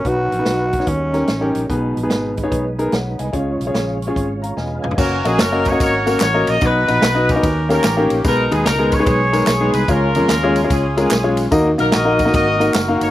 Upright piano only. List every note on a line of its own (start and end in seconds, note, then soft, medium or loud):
0.04 0.69 B2 medium
0.04 0.30 B3 medium
0.04 0.30 D#4 medium
0.04 0.30 F#4 medium
0.04 0.30 B4 medium
0.39 0.66 B3 medium
0.39 0.66 D#4 medium
0.39 0.67 F#4 medium
0.39 0.67 B4 medium
0.79 0.87 B3 medium
0.79 0.87 D#4 medium
0.79 0.87 F#4 medium
0.79 0.87 C#5 medium
0.87 1.51 D#3 medium
1.13 1.27 C#4 medium
1.13 1.27 D#4 medium
1.13 1.27 G4 medium
1.13 1.28 A#4 medium
1.41 1.61 C#4 medium
1.41 1.61 D#4 medium
1.41 1.61 G4 medium
1.41 1.61 A#4 medium
1.69 2.33 B2 medium
1.69 1.95 B3 medium
1.69 1.95 D#4 medium
1.69 1.95 G#4 medium
1.69 1.95 B4 medium
2.03 2.31 B3 medium
2.03 2.31 D#4 medium
2.03 2.31 G#4 medium
2.03 2.31 B4 medium
2.43 2.63 B3 medium
2.43 2.63 D#4 medium
2.43 2.63 G#4 medium
2.43 2.63 C#5 medium
2.79 2.92 B3 medium
2.79 2.92 D#4 medium
2.79 2.92 G#4 medium
2.79 2.92 A#4 medium
2.93 3.19 C#5 soft
2.93 3.18 F#5 medium
3.19 3.58 D#5 soft
3.19 3.58 G#5 medium
3.33 3.97 C#3 medium
3.33 3.59 C#4 medium
3.33 3.59 F4 medium
3.33 3.59 G#4 medium
3.33 3.59 C#5 medium
3.67 3.95 C#4 medium
3.67 3.95 F4 medium
3.67 3.95 G#4 medium
3.67 3.95 C#5 medium
4.07 4.27 C#4 medium
4.07 4.28 F4 medium
4.07 4.27 G#4 medium
4.07 4.27 C#5 medium
4.42 4.56 F5 soft
4.42 4.56 A#5 medium
4.57 4.83 D#5 soft
4.57 4.82 G#5 medium
4.83 5.23 B4 soft
4.83 5.22 F5 medium
4.98 5.15 A#3 medium
4.98 5.15 C#4 medium
4.98 5.15 F#4 medium
4.98 5.15 A#4 medium
4.98 5.15 C#5 medium
5.25 5.38 A#3 medium
5.25 5.38 C#4 medium
5.25 5.39 F#4 medium
5.25 5.38 A#4 medium
5.25 5.38 D#5 medium
5.52 5.67 A#3 medium
5.52 5.68 C#4 medium
5.52 5.68 F#4 medium
5.52 5.68 A#4 medium
5.52 5.67 D#5 medium
5.72 5.91 A#3 medium
5.72 5.91 C#4 medium
5.72 5.91 F#4 medium
5.72 5.92 A#4 medium
5.72 5.91 D#5 medium
6.06 6.20 A#3 medium
6.06 6.20 C#4 medium
6.06 6.20 F#4 medium
6.06 6.20 A#4 medium
6.06 6.20 C#5 medium
6.34 6.54 A#3 medium
6.34 6.54 C#4 medium
6.34 6.54 F#4 medium
6.34 6.54 A#4 medium
6.34 6.54 D#5 medium
6.61 7.25 B2 medium
6.61 6.78 B3 medium
6.61 6.78 D#4 medium
6.61 6.78 F#4 medium
6.61 6.79 B4 medium
6.61 6.78 D#5 medium
6.88 7.02 B3 medium
6.88 7.02 D#4 medium
6.88 7.02 F#4 medium
6.88 7.02 B4 medium
6.88 7.02 D#5 medium
7.15 7.31 B3 medium
7.15 7.31 D#4 medium
7.15 7.31 F#4 medium
7.15 7.31 B4 medium
7.15 7.31 D#5 medium
7.36 7.43 B3 medium
7.36 7.43 D#4 medium
7.36 7.43 F#4 medium
7.36 7.43 B4 medium
7.36 7.43 D#5 medium
7.43 8.07 D#3 medium
7.69 7.83 A#3 medium
7.69 7.83 C#4 medium
7.69 7.83 D#4 medium
7.69 7.83 G4 medium
7.69 7.83 A#4 medium
7.96 8.17 A#3 medium
7.96 8.17 C#4 medium
7.96 8.17 D#4 medium
7.96 8.17 G4 medium
7.96 8.17 A#4 medium
8.24 8.88 B2 medium
8.24 8.42 G#3 medium
8.24 8.42 B3 medium
8.24 8.42 D#4 medium
8.24 8.42 G#4 medium
8.24 8.42 B4 medium
8.51 8.65 G#3 medium
8.51 8.65 B3 medium
8.51 8.65 D#4 medium
8.51 8.65 G#4 medium
8.51 8.65 B4 medium
8.79 8.94 G#3 medium
8.79 8.94 B3 medium
8.79 8.94 D#4 medium
8.79 8.94 G#4 medium
8.79 8.95 A#4 medium
8.99 9.19 G#3 medium
8.99 9.19 B3 medium
8.99 9.19 D#4 medium
8.99 9.19 G#4 medium
8.99 9.19 B4 medium
9.33 9.47 G#3 medium
9.33 9.47 B3 medium
9.33 9.47 D#4 medium
9.33 9.47 G#4 medium
9.33 9.47 A#4 medium
9.61 9.81 G#3 medium
9.61 9.81 B3 medium
9.61 9.81 D#4 medium
9.61 9.81 G#4 medium
9.61 9.81 B4 medium
9.89 10.52 C#3 medium
9.89 10.06 G#3 medium
9.89 10.06 C#4 medium
9.89 10.06 F4 medium
9.89 10.06 G#4 medium
9.89 10.06 C#5 medium
10.16 10.29 G#3 medium
10.16 10.29 C#4 medium
10.16 10.29 F4 medium
10.16 10.29 G#4 medium
10.16 10.29 A#4 medium
10.43 10.58 G#3 medium
10.43 10.58 C#4 medium
10.43 10.58 F4 medium
10.43 10.58 G#4 medium
10.43 10.58 C#5 loud
10.64 10.83 G#3 medium
10.64 10.83 C#4 medium
10.64 10.83 F4 medium
10.64 10.83 G#4 medium
10.64 10.83 C#5 medium
10.97 11.11 G#3 medium
10.97 11.11 C#4 medium
10.97 11.10 F4 medium
10.97 11.11 G#4 medium
10.97 11.11 A#4 medium
11.24 11.44 G#3 medium
11.24 11.44 C#4 medium
11.24 11.44 F4 medium
11.24 11.44 G#4 medium
11.24 11.44 C#5 medium
11.51 12.15 D#3 medium
11.51 11.69 A#3 medium
11.51 11.69 D#4 medium
11.51 11.69 F#4 medium
11.51 11.69 A#4 medium
11.51 11.69 D#5 loud
11.78 11.92 A#3 medium
11.78 11.92 D#4 medium
11.78 11.92 F#4 medium
11.78 11.92 A#4 medium
11.78 11.92 D#5 medium
12.05 12.21 A#3 medium
12.05 12.21 D#4 medium
12.05 12.21 F#4 medium
12.05 12.21 A#4 medium
12.05 12.21 D#5 medium
12.25 12.45 A#3 medium
12.25 12.45 D#4 medium
12.25 12.45 F#4 medium
12.25 12.45 A#4 medium
12.25 12.45 D#5 medium
12.60 12.74 A#3 medium
12.60 12.74 D#4 medium
12.60 12.74 F#4 medium
12.60 12.74 A#4 medium
12.60 12.74 D#5 medium
12.88 13.08 A#3 medium
12.88 13.08 D#4 medium
12.88 13.08 F#4 medium
12.88 13.08 A#4 medium
12.88 13.08 F5 medium